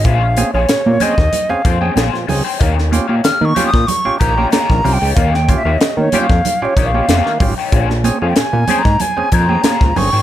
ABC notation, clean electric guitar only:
X:1
M:4/4
L:1/16
Q:1/4=94
K:Bbdor
V:1 name="Clean electric guitar"
[DAcf] z2 [DAcf] z2 [DAcg] z3 [DAcg] [DAcg] [DAcf] z2 [DAcg] | [EGdf] z2 [EGdf] z2 [EGdg] z3 [EGdg] [EGdg] [EGdf] z2 [EGdg] | [EGdf] z2 [EGdf] z2 [EGdg] z3 [EGdg] [EGdg] [EGdf] z2 [EGdg] | [DAcf] z2 [DAcf] z2 [DAcg] z3 [DAcg] [DAcg] [DAcf] z2 [DAcg] |]